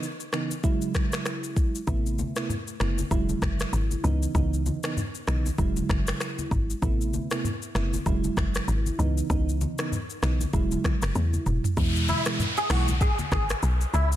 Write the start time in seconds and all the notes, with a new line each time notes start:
0.03 shaker
0.20 shaker
0.32 C#3 E3 B3 D#4, finger snap, cross-stick, shaker
0.51 shaker
0.63 C#3 F#3 G#3 E4, kick, shaker
0.82 shaker
0.94 finger snap, kick, cross-stick, shaker
1.12 finger snap, cross-stick, shaker
1.26 finger snap, cross-stick, shaker
1.44 shaker
1.56 kick, shaker
1.75 shaker
1.87 A1 C3 A3 B3 E4, kick, low conga, shaker
2.06 shaker
2.19 high conga, shaker
2.36 C3 A3 B3 E4, finger snap, cross-stick, shaker
2.49 low conga, shaker
2.67 shaker
2.80 F#1 C3 A3 B3 E4, finger snap, cross-stick, shaker
2.98 high conga, shaker
3.11 E1 C#3 F#3 G#3 E4, kick, low conga, shaker
3.29 high conga, shaker
3.42 F#1, finger snap, kick, cross-stick, high conga, shaker
3.60 finger snap, cross-stick, shaker
3.73 G#1, shaker
3.91 high conga, shaker
4.04 C#2 C#3 E3 B3 D#4, low conga, shaker
4.23 shaker
4.35 C#2 C#3 E3 B3 D#4, kick, low conga, shaker
4.54 shaker
4.66 high conga, shaker
4.83 C#3 E3 B3 D#4, finger snap, cross-stick, shaker
4.97 low conga, shaker
5.15 shaker
5.27 B1 C#3 E3 B3 D#4, finger snap, cross-stick, shaker
5.46 high conga, shaker
5.58 E1 C#3 F#3 G#3 E4, kick, low conga, shaker
5.76 high conga, shaker
5.89 F#1, finger snap, kick, cross-stick, high conga, shaker
6.07 finger snap, cross-stick, shaker
6.20 finger snap, cross-stick, shaker
6.38 high conga, shaker
6.51 G#1, kick, low conga, shaker
6.70 shaker
6.82 A1 C3 A3 B3 E4, kick, low conga, shaker
7.01 shaker
7.13 high conga, shaker
7.31 C3 A3 B3 E4, finger snap, cross-stick, shaker
7.44 low conga, shaker
7.62 shaker
7.75 F#1 C3 A3 B3 E4, finger snap, cross-stick, shaker
7.93 high conga, shaker
8.06 E1 C#3 F#3 G#3 E4, kick, low conga, shaker
8.24 high conga, shaker
8.37 F#1, finger snap, kick, cross-stick, high conga, shaker
8.55 finger snap, cross-stick, shaker
8.68 G#1, shaker
8.86 high conga, shaker
8.99 C#2 C#3 E3 B3 D#4, low conga, shaker
9.18 shaker
9.30 C#2 C#3 E3 B3 D#4, kick, low conga, shaker
9.49 shaker
9.61 high conga, shaker
9.78 C#3 E3 B3 D#4, finger snap, cross-stick, shaker
9.92 low conga, shaker
10.10 shaker
10.22 B1 C#3 E3 B3 D#4, finger snap, cross-stick, shaker
10.41 high conga, shaker
10.53 E1 C#3 F#3 G#3 E4, kick, low conga, shaker
10.71 high conga, shaker
10.84 finger snap, kick, cross-stick, high conga, shaker
11.02 F#1, finger snap, cross-stick, shaker
11.15 E2, high tom, shaker
11.33 high conga, shaker
11.46 E1, mid tom, low conga, shaker
11.64 floor tom, shaker
11.77 E2 B2 E3 G#3 E4, kick, downlifter, low conga, shaker
11.96 shaker
12.08 E4, high conga, shaker
12.26 B2 E3 G#3 E4, finger snap, cross-stick, shaker
12.39 low conga, shaker
12.57 G#4, shaker
12.70 B1 B2 E3 G#3 E4 F#4, finger snap, cross-stick, open hi-hat, shaker
12.88 high conga, shaker
13.01 G#4, kick, low conga, shaker
13.19 high conga, shaker
13.32 G#1 G#4, finger snap, kick, cross-stick, high conga, shaker
13.49 finger snap, cross-stick, shaker
13.63 B1, shaker
13.81 shaker
13.94 C#2 E4, shaker
14.12 shaker